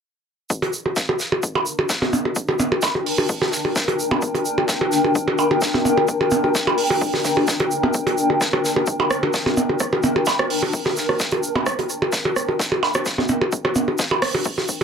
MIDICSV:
0, 0, Header, 1, 4, 480
1, 0, Start_track
1, 0, Key_signature, -2, "minor"
1, 0, Tempo, 465116
1, 518, Time_signature, 4, 2, 24, 8
1, 15311, End_track
2, 0, Start_track
2, 0, Title_t, "Ambient pad"
2, 0, Program_c, 0, 92
2, 519, Note_on_c, 0, 62, 79
2, 924, Note_on_c, 0, 70, 88
2, 1865, Note_on_c, 0, 79, 88
2, 15311, Note_off_c, 0, 62, 0
2, 15311, Note_off_c, 0, 70, 0
2, 15311, Note_off_c, 0, 79, 0
2, 15311, End_track
3, 0, Start_track
3, 0, Title_t, "Percussion blips"
3, 643, Note_on_c, 9, 63, 70
3, 746, Note_off_c, 9, 63, 0
3, 884, Note_on_c, 9, 63, 39
3, 987, Note_off_c, 9, 63, 0
3, 1125, Note_on_c, 9, 63, 69
3, 1228, Note_off_c, 9, 63, 0
3, 1364, Note_on_c, 9, 63, 70
3, 1467, Note_off_c, 9, 63, 0
3, 1604, Note_on_c, 9, 56, 60
3, 1604, Note_on_c, 9, 63, 41
3, 1707, Note_off_c, 9, 56, 0
3, 1707, Note_off_c, 9, 63, 0
3, 1845, Note_on_c, 9, 63, 71
3, 1948, Note_off_c, 9, 63, 0
3, 2085, Note_on_c, 9, 63, 69
3, 2085, Note_on_c, 9, 64, 73
3, 2188, Note_off_c, 9, 63, 0
3, 2188, Note_off_c, 9, 64, 0
3, 2198, Note_on_c, 9, 64, 85
3, 2301, Note_off_c, 9, 64, 0
3, 2326, Note_on_c, 9, 63, 40
3, 2429, Note_off_c, 9, 63, 0
3, 2565, Note_on_c, 9, 63, 74
3, 2668, Note_off_c, 9, 63, 0
3, 2678, Note_on_c, 9, 64, 87
3, 2782, Note_off_c, 9, 64, 0
3, 2805, Note_on_c, 9, 63, 71
3, 2909, Note_off_c, 9, 63, 0
3, 2918, Note_on_c, 9, 56, 56
3, 3022, Note_off_c, 9, 56, 0
3, 3045, Note_on_c, 9, 63, 41
3, 3149, Note_off_c, 9, 63, 0
3, 3285, Note_on_c, 9, 63, 72
3, 3388, Note_off_c, 9, 63, 0
3, 3525, Note_on_c, 9, 63, 74
3, 3629, Note_off_c, 9, 63, 0
3, 3765, Note_on_c, 9, 63, 42
3, 3868, Note_off_c, 9, 63, 0
3, 4004, Note_on_c, 9, 63, 71
3, 4107, Note_off_c, 9, 63, 0
3, 4245, Note_on_c, 9, 56, 58
3, 4245, Note_on_c, 9, 63, 75
3, 4245, Note_on_c, 9, 64, 87
3, 4348, Note_off_c, 9, 56, 0
3, 4348, Note_off_c, 9, 63, 0
3, 4348, Note_off_c, 9, 64, 0
3, 4485, Note_on_c, 9, 63, 42
3, 4588, Note_off_c, 9, 63, 0
3, 4725, Note_on_c, 9, 63, 71
3, 4829, Note_off_c, 9, 63, 0
3, 4965, Note_on_c, 9, 63, 75
3, 5069, Note_off_c, 9, 63, 0
3, 5206, Note_on_c, 9, 63, 43
3, 5309, Note_off_c, 9, 63, 0
3, 5445, Note_on_c, 9, 63, 76
3, 5548, Note_off_c, 9, 63, 0
3, 5559, Note_on_c, 9, 56, 57
3, 5662, Note_off_c, 9, 56, 0
3, 5686, Note_on_c, 9, 63, 76
3, 5789, Note_off_c, 9, 63, 0
3, 5927, Note_on_c, 9, 63, 41
3, 5927, Note_on_c, 9, 64, 72
3, 6030, Note_off_c, 9, 63, 0
3, 6030, Note_off_c, 9, 64, 0
3, 6039, Note_on_c, 9, 64, 86
3, 6143, Note_off_c, 9, 64, 0
3, 6166, Note_on_c, 9, 63, 74
3, 6269, Note_off_c, 9, 63, 0
3, 6406, Note_on_c, 9, 63, 74
3, 6509, Note_off_c, 9, 63, 0
3, 6519, Note_on_c, 9, 64, 85
3, 6622, Note_off_c, 9, 64, 0
3, 6646, Note_on_c, 9, 63, 41
3, 6749, Note_off_c, 9, 63, 0
3, 6886, Note_on_c, 9, 56, 57
3, 6886, Note_on_c, 9, 63, 75
3, 6989, Note_off_c, 9, 56, 0
3, 6989, Note_off_c, 9, 63, 0
3, 7125, Note_on_c, 9, 63, 74
3, 7228, Note_off_c, 9, 63, 0
3, 7365, Note_on_c, 9, 63, 42
3, 7468, Note_off_c, 9, 63, 0
3, 7605, Note_on_c, 9, 63, 72
3, 7709, Note_off_c, 9, 63, 0
3, 7845, Note_on_c, 9, 63, 75
3, 7948, Note_off_c, 9, 63, 0
3, 8085, Note_on_c, 9, 63, 42
3, 8085, Note_on_c, 9, 64, 83
3, 8188, Note_off_c, 9, 63, 0
3, 8188, Note_off_c, 9, 64, 0
3, 8325, Note_on_c, 9, 63, 70
3, 8428, Note_off_c, 9, 63, 0
3, 8565, Note_on_c, 9, 63, 41
3, 8668, Note_off_c, 9, 63, 0
3, 8805, Note_on_c, 9, 63, 74
3, 8908, Note_off_c, 9, 63, 0
3, 9044, Note_on_c, 9, 63, 73
3, 9148, Note_off_c, 9, 63, 0
3, 9285, Note_on_c, 9, 56, 62
3, 9285, Note_on_c, 9, 63, 42
3, 9388, Note_off_c, 9, 56, 0
3, 9388, Note_off_c, 9, 63, 0
3, 9525, Note_on_c, 9, 63, 74
3, 9628, Note_off_c, 9, 63, 0
3, 9765, Note_on_c, 9, 63, 72
3, 9765, Note_on_c, 9, 64, 69
3, 9868, Note_off_c, 9, 63, 0
3, 9868, Note_off_c, 9, 64, 0
3, 9878, Note_on_c, 9, 64, 78
3, 9981, Note_off_c, 9, 64, 0
3, 10005, Note_on_c, 9, 63, 41
3, 10108, Note_off_c, 9, 63, 0
3, 10244, Note_on_c, 9, 63, 69
3, 10348, Note_off_c, 9, 63, 0
3, 10357, Note_on_c, 9, 64, 84
3, 10461, Note_off_c, 9, 64, 0
3, 10484, Note_on_c, 9, 63, 67
3, 10588, Note_off_c, 9, 63, 0
3, 10598, Note_on_c, 9, 56, 63
3, 10701, Note_off_c, 9, 56, 0
3, 10726, Note_on_c, 9, 63, 39
3, 10829, Note_off_c, 9, 63, 0
3, 10966, Note_on_c, 9, 63, 69
3, 11069, Note_off_c, 9, 63, 0
3, 11205, Note_on_c, 9, 63, 72
3, 11309, Note_off_c, 9, 63, 0
3, 11446, Note_on_c, 9, 63, 41
3, 11549, Note_off_c, 9, 63, 0
3, 11686, Note_on_c, 9, 63, 69
3, 11789, Note_off_c, 9, 63, 0
3, 11925, Note_on_c, 9, 56, 63
3, 11925, Note_on_c, 9, 63, 70
3, 11925, Note_on_c, 9, 64, 81
3, 12028, Note_off_c, 9, 56, 0
3, 12028, Note_off_c, 9, 63, 0
3, 12028, Note_off_c, 9, 64, 0
3, 12166, Note_on_c, 9, 63, 39
3, 12269, Note_off_c, 9, 63, 0
3, 12405, Note_on_c, 9, 63, 70
3, 12508, Note_off_c, 9, 63, 0
3, 12645, Note_on_c, 9, 63, 70
3, 12748, Note_off_c, 9, 63, 0
3, 12885, Note_on_c, 9, 63, 39
3, 12988, Note_off_c, 9, 63, 0
3, 13125, Note_on_c, 9, 63, 71
3, 13228, Note_off_c, 9, 63, 0
3, 13238, Note_on_c, 9, 56, 65
3, 13341, Note_off_c, 9, 56, 0
3, 13365, Note_on_c, 9, 63, 69
3, 13468, Note_off_c, 9, 63, 0
3, 13604, Note_on_c, 9, 63, 39
3, 13604, Note_on_c, 9, 64, 72
3, 13708, Note_off_c, 9, 63, 0
3, 13708, Note_off_c, 9, 64, 0
3, 13717, Note_on_c, 9, 64, 83
3, 13820, Note_off_c, 9, 64, 0
3, 13844, Note_on_c, 9, 63, 69
3, 13947, Note_off_c, 9, 63, 0
3, 14084, Note_on_c, 9, 63, 72
3, 14187, Note_off_c, 9, 63, 0
3, 14197, Note_on_c, 9, 64, 89
3, 14300, Note_off_c, 9, 64, 0
3, 14324, Note_on_c, 9, 63, 40
3, 14427, Note_off_c, 9, 63, 0
3, 14564, Note_on_c, 9, 56, 62
3, 14564, Note_on_c, 9, 63, 70
3, 14667, Note_off_c, 9, 56, 0
3, 14667, Note_off_c, 9, 63, 0
3, 14804, Note_on_c, 9, 63, 70
3, 14907, Note_off_c, 9, 63, 0
3, 15045, Note_on_c, 9, 63, 42
3, 15148, Note_off_c, 9, 63, 0
3, 15311, End_track
4, 0, Start_track
4, 0, Title_t, "Drums"
4, 517, Note_on_c, 9, 36, 102
4, 521, Note_on_c, 9, 82, 77
4, 620, Note_off_c, 9, 36, 0
4, 624, Note_off_c, 9, 82, 0
4, 650, Note_on_c, 9, 42, 42
4, 753, Note_off_c, 9, 42, 0
4, 754, Note_on_c, 9, 82, 55
4, 857, Note_off_c, 9, 82, 0
4, 993, Note_on_c, 9, 38, 95
4, 996, Note_on_c, 9, 82, 82
4, 997, Note_on_c, 9, 36, 105
4, 1096, Note_off_c, 9, 38, 0
4, 1099, Note_off_c, 9, 82, 0
4, 1100, Note_off_c, 9, 36, 0
4, 1230, Note_on_c, 9, 82, 53
4, 1237, Note_on_c, 9, 38, 40
4, 1333, Note_off_c, 9, 82, 0
4, 1340, Note_off_c, 9, 38, 0
4, 1477, Note_on_c, 9, 36, 100
4, 1478, Note_on_c, 9, 82, 79
4, 1580, Note_off_c, 9, 36, 0
4, 1581, Note_off_c, 9, 82, 0
4, 1713, Note_on_c, 9, 82, 60
4, 1817, Note_off_c, 9, 82, 0
4, 1952, Note_on_c, 9, 38, 108
4, 1956, Note_on_c, 9, 82, 85
4, 1957, Note_on_c, 9, 36, 104
4, 2055, Note_off_c, 9, 38, 0
4, 2059, Note_off_c, 9, 82, 0
4, 2060, Note_off_c, 9, 36, 0
4, 2079, Note_on_c, 9, 38, 37
4, 2182, Note_off_c, 9, 38, 0
4, 2200, Note_on_c, 9, 82, 58
4, 2304, Note_off_c, 9, 82, 0
4, 2434, Note_on_c, 9, 82, 85
4, 2437, Note_on_c, 9, 36, 105
4, 2537, Note_off_c, 9, 82, 0
4, 2540, Note_off_c, 9, 36, 0
4, 2678, Note_on_c, 9, 82, 64
4, 2781, Note_off_c, 9, 82, 0
4, 2910, Note_on_c, 9, 82, 80
4, 2914, Note_on_c, 9, 38, 111
4, 2918, Note_on_c, 9, 36, 106
4, 3014, Note_off_c, 9, 82, 0
4, 3018, Note_off_c, 9, 38, 0
4, 3021, Note_off_c, 9, 36, 0
4, 3162, Note_on_c, 9, 46, 72
4, 3265, Note_off_c, 9, 46, 0
4, 3395, Note_on_c, 9, 82, 78
4, 3398, Note_on_c, 9, 36, 105
4, 3499, Note_off_c, 9, 82, 0
4, 3501, Note_off_c, 9, 36, 0
4, 3525, Note_on_c, 9, 38, 34
4, 3628, Note_off_c, 9, 38, 0
4, 3630, Note_on_c, 9, 38, 41
4, 3646, Note_on_c, 9, 82, 55
4, 3733, Note_off_c, 9, 38, 0
4, 3749, Note_off_c, 9, 82, 0
4, 3878, Note_on_c, 9, 36, 110
4, 3879, Note_on_c, 9, 38, 104
4, 3879, Note_on_c, 9, 82, 80
4, 3981, Note_off_c, 9, 36, 0
4, 3982, Note_off_c, 9, 38, 0
4, 3982, Note_off_c, 9, 82, 0
4, 4009, Note_on_c, 9, 42, 37
4, 4112, Note_off_c, 9, 42, 0
4, 4122, Note_on_c, 9, 82, 54
4, 4225, Note_off_c, 9, 82, 0
4, 4354, Note_on_c, 9, 82, 76
4, 4358, Note_on_c, 9, 36, 107
4, 4457, Note_off_c, 9, 82, 0
4, 4461, Note_off_c, 9, 36, 0
4, 4490, Note_on_c, 9, 42, 41
4, 4593, Note_off_c, 9, 42, 0
4, 4598, Note_on_c, 9, 82, 68
4, 4701, Note_off_c, 9, 82, 0
4, 4829, Note_on_c, 9, 38, 105
4, 4838, Note_on_c, 9, 36, 109
4, 4839, Note_on_c, 9, 82, 85
4, 4933, Note_off_c, 9, 38, 0
4, 4941, Note_off_c, 9, 36, 0
4, 4942, Note_off_c, 9, 82, 0
4, 5075, Note_on_c, 9, 38, 32
4, 5078, Note_on_c, 9, 82, 64
4, 5178, Note_off_c, 9, 38, 0
4, 5181, Note_off_c, 9, 82, 0
4, 5318, Note_on_c, 9, 36, 108
4, 5319, Note_on_c, 9, 82, 74
4, 5421, Note_off_c, 9, 36, 0
4, 5423, Note_off_c, 9, 82, 0
4, 5559, Note_on_c, 9, 82, 64
4, 5662, Note_off_c, 9, 82, 0
4, 5793, Note_on_c, 9, 82, 74
4, 5798, Note_on_c, 9, 36, 111
4, 5802, Note_on_c, 9, 38, 98
4, 5896, Note_off_c, 9, 82, 0
4, 5902, Note_off_c, 9, 36, 0
4, 5905, Note_off_c, 9, 38, 0
4, 5922, Note_on_c, 9, 38, 41
4, 6025, Note_off_c, 9, 38, 0
4, 6044, Note_on_c, 9, 82, 56
4, 6148, Note_off_c, 9, 82, 0
4, 6276, Note_on_c, 9, 82, 78
4, 6279, Note_on_c, 9, 36, 108
4, 6379, Note_off_c, 9, 82, 0
4, 6382, Note_off_c, 9, 36, 0
4, 6512, Note_on_c, 9, 82, 58
4, 6615, Note_off_c, 9, 82, 0
4, 6758, Note_on_c, 9, 36, 112
4, 6761, Note_on_c, 9, 38, 105
4, 6761, Note_on_c, 9, 82, 81
4, 6862, Note_off_c, 9, 36, 0
4, 6864, Note_off_c, 9, 38, 0
4, 6864, Note_off_c, 9, 82, 0
4, 6994, Note_on_c, 9, 46, 74
4, 7098, Note_off_c, 9, 46, 0
4, 7238, Note_on_c, 9, 36, 108
4, 7239, Note_on_c, 9, 82, 73
4, 7342, Note_off_c, 9, 36, 0
4, 7342, Note_off_c, 9, 82, 0
4, 7368, Note_on_c, 9, 38, 35
4, 7471, Note_off_c, 9, 38, 0
4, 7475, Note_on_c, 9, 38, 38
4, 7477, Note_on_c, 9, 82, 59
4, 7478, Note_on_c, 9, 36, 59
4, 7578, Note_off_c, 9, 38, 0
4, 7581, Note_off_c, 9, 82, 0
4, 7582, Note_off_c, 9, 36, 0
4, 7714, Note_on_c, 9, 82, 75
4, 7718, Note_on_c, 9, 36, 113
4, 7721, Note_on_c, 9, 38, 118
4, 7817, Note_off_c, 9, 82, 0
4, 7822, Note_off_c, 9, 36, 0
4, 7824, Note_off_c, 9, 38, 0
4, 7841, Note_on_c, 9, 42, 35
4, 7944, Note_off_c, 9, 42, 0
4, 7958, Note_on_c, 9, 82, 58
4, 8061, Note_off_c, 9, 82, 0
4, 8193, Note_on_c, 9, 82, 84
4, 8198, Note_on_c, 9, 36, 105
4, 8296, Note_off_c, 9, 82, 0
4, 8301, Note_off_c, 9, 36, 0
4, 8326, Note_on_c, 9, 42, 39
4, 8429, Note_off_c, 9, 42, 0
4, 8440, Note_on_c, 9, 82, 64
4, 8543, Note_off_c, 9, 82, 0
4, 8678, Note_on_c, 9, 36, 107
4, 8679, Note_on_c, 9, 38, 99
4, 8682, Note_on_c, 9, 82, 79
4, 8781, Note_off_c, 9, 36, 0
4, 8782, Note_off_c, 9, 38, 0
4, 8785, Note_off_c, 9, 82, 0
4, 8805, Note_on_c, 9, 37, 35
4, 8908, Note_off_c, 9, 37, 0
4, 8922, Note_on_c, 9, 38, 38
4, 8926, Note_on_c, 9, 82, 56
4, 9025, Note_off_c, 9, 38, 0
4, 9029, Note_off_c, 9, 82, 0
4, 9151, Note_on_c, 9, 82, 74
4, 9158, Note_on_c, 9, 36, 109
4, 9254, Note_off_c, 9, 82, 0
4, 9261, Note_off_c, 9, 36, 0
4, 9397, Note_on_c, 9, 37, 69
4, 9400, Note_on_c, 9, 82, 59
4, 9501, Note_off_c, 9, 37, 0
4, 9504, Note_off_c, 9, 82, 0
4, 9635, Note_on_c, 9, 82, 78
4, 9637, Note_on_c, 9, 36, 109
4, 9639, Note_on_c, 9, 38, 111
4, 9738, Note_off_c, 9, 82, 0
4, 9741, Note_off_c, 9, 36, 0
4, 9742, Note_off_c, 9, 38, 0
4, 9763, Note_on_c, 9, 38, 40
4, 9867, Note_off_c, 9, 38, 0
4, 9878, Note_on_c, 9, 82, 66
4, 9981, Note_off_c, 9, 82, 0
4, 10112, Note_on_c, 9, 82, 78
4, 10117, Note_on_c, 9, 36, 102
4, 10117, Note_on_c, 9, 37, 36
4, 10215, Note_off_c, 9, 82, 0
4, 10220, Note_off_c, 9, 37, 0
4, 10221, Note_off_c, 9, 36, 0
4, 10354, Note_on_c, 9, 82, 60
4, 10457, Note_off_c, 9, 82, 0
4, 10589, Note_on_c, 9, 82, 83
4, 10597, Note_on_c, 9, 36, 105
4, 10604, Note_on_c, 9, 38, 113
4, 10692, Note_off_c, 9, 82, 0
4, 10700, Note_off_c, 9, 36, 0
4, 10707, Note_off_c, 9, 38, 0
4, 10726, Note_on_c, 9, 37, 72
4, 10829, Note_off_c, 9, 37, 0
4, 10838, Note_on_c, 9, 46, 77
4, 10941, Note_off_c, 9, 46, 0
4, 11077, Note_on_c, 9, 36, 99
4, 11077, Note_on_c, 9, 82, 82
4, 11180, Note_off_c, 9, 36, 0
4, 11180, Note_off_c, 9, 82, 0
4, 11200, Note_on_c, 9, 38, 33
4, 11303, Note_off_c, 9, 38, 0
4, 11316, Note_on_c, 9, 82, 58
4, 11325, Note_on_c, 9, 38, 40
4, 11420, Note_off_c, 9, 82, 0
4, 11429, Note_off_c, 9, 38, 0
4, 11446, Note_on_c, 9, 37, 36
4, 11549, Note_off_c, 9, 37, 0
4, 11556, Note_on_c, 9, 38, 113
4, 11556, Note_on_c, 9, 82, 87
4, 11557, Note_on_c, 9, 36, 104
4, 11659, Note_off_c, 9, 38, 0
4, 11660, Note_off_c, 9, 36, 0
4, 11660, Note_off_c, 9, 82, 0
4, 11676, Note_on_c, 9, 42, 39
4, 11779, Note_off_c, 9, 42, 0
4, 11799, Note_on_c, 9, 82, 66
4, 11903, Note_off_c, 9, 82, 0
4, 12037, Note_on_c, 9, 36, 102
4, 12037, Note_on_c, 9, 37, 77
4, 12040, Note_on_c, 9, 82, 76
4, 12140, Note_off_c, 9, 36, 0
4, 12141, Note_off_c, 9, 37, 0
4, 12143, Note_off_c, 9, 82, 0
4, 12165, Note_on_c, 9, 42, 42
4, 12268, Note_off_c, 9, 42, 0
4, 12276, Note_on_c, 9, 82, 66
4, 12380, Note_off_c, 9, 82, 0
4, 12513, Note_on_c, 9, 38, 112
4, 12514, Note_on_c, 9, 82, 89
4, 12517, Note_on_c, 9, 36, 103
4, 12616, Note_off_c, 9, 38, 0
4, 12617, Note_off_c, 9, 82, 0
4, 12620, Note_off_c, 9, 36, 0
4, 12759, Note_on_c, 9, 37, 37
4, 12759, Note_on_c, 9, 82, 55
4, 12862, Note_off_c, 9, 37, 0
4, 12863, Note_off_c, 9, 82, 0
4, 12997, Note_on_c, 9, 36, 101
4, 13004, Note_on_c, 9, 38, 104
4, 13008, Note_on_c, 9, 82, 74
4, 13100, Note_off_c, 9, 36, 0
4, 13108, Note_off_c, 9, 38, 0
4, 13111, Note_off_c, 9, 82, 0
4, 13241, Note_on_c, 9, 38, 36
4, 13344, Note_off_c, 9, 38, 0
4, 13357, Note_on_c, 9, 82, 58
4, 13365, Note_on_c, 9, 37, 78
4, 13460, Note_off_c, 9, 82, 0
4, 13468, Note_off_c, 9, 37, 0
4, 13475, Note_on_c, 9, 82, 77
4, 13477, Note_on_c, 9, 36, 104
4, 13479, Note_on_c, 9, 38, 117
4, 13578, Note_off_c, 9, 82, 0
4, 13581, Note_off_c, 9, 36, 0
4, 13582, Note_off_c, 9, 38, 0
4, 13610, Note_on_c, 9, 38, 39
4, 13710, Note_on_c, 9, 82, 60
4, 13714, Note_off_c, 9, 38, 0
4, 13813, Note_off_c, 9, 82, 0
4, 13957, Note_on_c, 9, 36, 107
4, 13958, Note_on_c, 9, 82, 75
4, 14061, Note_off_c, 9, 36, 0
4, 14061, Note_off_c, 9, 82, 0
4, 14084, Note_on_c, 9, 37, 39
4, 14187, Note_off_c, 9, 37, 0
4, 14193, Note_on_c, 9, 82, 67
4, 14296, Note_off_c, 9, 82, 0
4, 14433, Note_on_c, 9, 82, 78
4, 14437, Note_on_c, 9, 36, 106
4, 14445, Note_on_c, 9, 38, 117
4, 14536, Note_off_c, 9, 82, 0
4, 14541, Note_off_c, 9, 36, 0
4, 14548, Note_off_c, 9, 38, 0
4, 14674, Note_on_c, 9, 38, 36
4, 14675, Note_on_c, 9, 46, 72
4, 14677, Note_on_c, 9, 37, 76
4, 14777, Note_off_c, 9, 38, 0
4, 14779, Note_off_c, 9, 46, 0
4, 14780, Note_off_c, 9, 37, 0
4, 14910, Note_on_c, 9, 82, 76
4, 14917, Note_on_c, 9, 36, 103
4, 15013, Note_off_c, 9, 82, 0
4, 15021, Note_off_c, 9, 36, 0
4, 15041, Note_on_c, 9, 38, 33
4, 15144, Note_off_c, 9, 38, 0
4, 15152, Note_on_c, 9, 82, 67
4, 15157, Note_on_c, 9, 36, 58
4, 15256, Note_off_c, 9, 82, 0
4, 15261, Note_off_c, 9, 36, 0
4, 15311, End_track
0, 0, End_of_file